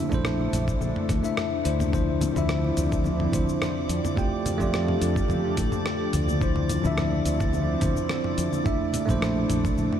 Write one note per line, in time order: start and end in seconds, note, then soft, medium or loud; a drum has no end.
0.00 0.09 A3 medium
0.00 1.91 A3 medium
0.00 0.11 D4 medium
0.00 1.91 D4 medium
0.00 0.13 E4 medium
0.00 1.25 E5 loud
0.09 0.46 A#1 loud
0.09 1.20 A3 loud
0.09 1.20 D4 medium
0.09 1.21 E4 medium
0.09 kick medium
0.09 mid tom medium
0.09 low conga loud
0.09 shaker soft
0.14 1.22 C5 loud
0.25 cross-stick loud
0.25 shaker soft
0.40 high conga medium
0.53 0.73 A#1 loud
0.53 closed hi-hat medium
0.53 mid tom medium
0.53 shaker medium
0.68 kick loud
0.68 shaker soft
0.81 0.91 A#1 medium
0.81 high conga loud
0.81 shaker soft
0.96 mid tom medium
1.09 1.19 D2 medium
1.09 kick loud
1.09 cross-stick soft
1.09 closed hi-hat medium
1.09 low conga medium
1.09 shaker medium
1.23 1.61 A3 medium
1.23 1.62 D4 medium
1.23 1.62 E4 medium
1.23 1.62 E5 medium
1.23 high conga medium
1.23 shaker soft
1.37 cross-stick medium
1.37 mid tom medium
1.37 shaker soft
1.64 2.29 D2 medium
1.64 1.89 A3 medium
1.64 1.89 D4 medium
1.64 1.90 E4 medium
1.64 1.90 C5 medium
1.64 closed hi-hat medium
1.64 shaker medium
1.79 mid tom medium
1.79 high conga loud
1.79 shaker soft
1.91 4.15 D3 medium
1.91 2.31 F3 medium
1.91 4.15 F3 medium
1.91 4.15 C4 medium
1.91 2.32 D4 medium
1.91 2.32 E4 medium
1.91 4.15 E4 medium
1.91 2.33 C5 medium
1.91 10.00 D5 medium
1.91 10.00 D6 medium
1.91 kick loud
1.91 mid tom medium
1.91 shaker soft
2.21 closed hi-hat medium
2.21 high conga loud
2.21 low conga medium
2.21 shaker medium
2.33 2.71 D2 loud
2.33 3.29 F3 medium
2.33 3.29 D4 medium
2.33 3.30 E4 medium
2.33 mid tom medium
2.33 low conga medium
2.33 shaker soft
2.38 3.31 E5 loud
2.49 cross-stick medium
2.49 shaker soft
2.64 high conga medium
2.77 3.27 D2 loud
2.77 closed hi-hat medium
2.77 mid tom medium
2.77 shaker medium
2.92 kick loud
2.92 shaker soft
3.04 high conga medium
3.04 shaker soft
3.20 mid tom medium
3.32 3.43 D2 medium
3.32 3.43 F3 medium
3.32 3.43 D4 medium
3.32 3.43 E4 medium
3.32 3.44 C5 medium
3.32 kick loud
3.32 closed hi-hat medium
3.32 low conga medium
3.32 shaker medium
3.47 high conga medium
3.47 shaker soft
3.62 cross-stick medium
3.62 mid tom medium
3.62 shaker soft
3.89 3.99 F2 medium
3.89 closed hi-hat medium
3.89 shaker medium
4.04 mid tom medium
4.04 high conga medium
4.04 shaker soft
4.16 6.39 F3 medium
4.16 4.56 A3 medium
4.16 6.39 D4 medium
4.16 4.56 F4 medium
4.16 6.39 G4 medium
4.16 4.57 G4 medium
4.16 6.39 A4 medium
4.16 4.57 G5 loud
4.16 kick loud
4.16 shaker soft
4.45 closed hi-hat medium
4.45 mid tom medium
4.45 high conga medium
4.45 low conga medium
4.45 shaker medium
4.58 4.95 F2 loud
4.58 6.37 A3 loud
4.58 6.38 F4 loud
4.58 6.39 G4 medium
4.58 kick medium
4.58 low conga medium
4.58 shaker soft
4.63 6.40 D5 loud
4.74 cross-stick medium
4.74 shaker soft
4.88 mid tom medium
4.88 high conga medium
5.02 5.21 F2 loud
5.02 closed hi-hat medium
5.02 shaker medium
5.16 kick loud
5.16 shaker soft
5.28 5.40 F2 medium
5.28 mid tom medium
5.28 high conga medium
5.28 shaker soft
5.57 5.68 A2 medium
5.57 kick loud
5.57 cross-stick soft
5.57 closed hi-hat medium
5.57 low conga medium
5.57 shaker medium
5.72 mid tom medium
5.72 high conga medium
5.72 shaker soft
5.86 cross-stick medium
5.86 shaker soft
6.13 6.77 D2 loud
6.13 closed hi-hat medium
6.13 mid tom medium
6.13 shaker medium
6.28 high conga medium
6.28 shaker soft
6.41 8.63 D3 medium
6.41 6.80 F3 medium
6.41 8.64 F3 medium
6.41 8.63 C4 medium
6.41 6.81 D4 medium
6.41 8.63 E4 medium
6.41 6.81 E4 medium
6.41 6.82 C5 medium
6.41 kick loud
6.41 shaker soft
6.56 mid tom medium
6.69 closed hi-hat loud
6.69 high conga medium
6.69 low conga medium
6.69 shaker medium
6.82 7.19 D2 loud
6.82 7.77 F3 medium
6.82 7.78 D4 medium
6.82 7.79 E4 medium
6.82 low conga medium
6.82 shaker soft
6.87 7.80 E5 loud
6.98 cross-stick medium
6.98 mid tom medium
6.98 shaker soft
7.12 high conga medium
7.25 7.75 D2 loud
7.25 closed hi-hat medium
7.25 shaker medium
7.40 kick loud
7.40 mid tom medium
7.40 shaker soft
7.53 high conga medium
7.53 shaker soft
7.80 7.92 D2 medium
7.80 7.91 F3 medium
7.80 7.92 D4 medium
7.80 7.92 E4 medium
7.80 7.93 C5 medium
7.80 kick loud
7.80 closed hi-hat medium
7.80 mid tom medium
7.80 low conga medium
7.80 shaker medium
7.96 high conga medium
7.96 shaker soft
8.09 cross-stick medium
8.09 shaker soft
8.24 mid tom medium
8.38 8.48 F2 medium
8.38 closed hi-hat loud
8.38 shaker medium
8.52 high conga medium
8.52 shaker soft
8.64 9.04 A3 medium
8.64 10.00 A3 medium
8.64 9.05 D4 medium
8.64 10.00 D4 medium
8.64 9.05 E4 medium
8.64 9.06 E5 loud
8.64 kick loud
8.64 mid tom medium
8.64 shaker soft
8.93 closed hi-hat loud
8.93 high conga medium
8.93 low conga medium
8.93 shaker medium
9.06 9.43 A#1 loud
9.06 10.00 A3 loud
9.06 10.00 D4 medium
9.06 10.00 E4 medium
9.06 kick medium
9.06 mid tom medium
9.06 low conga loud
9.06 shaker soft
9.11 10.00 C5 loud
9.22 cross-stick loud
9.22 shaker soft
9.37 high conga medium
9.50 9.70 A#1 loud
9.50 closed hi-hat medium
9.50 mid tom medium
9.50 shaker medium
9.65 kick loud
9.65 shaker soft
9.78 9.88 A#1 medium
9.78 high conga medium
9.78 shaker soft
9.93 mid tom medium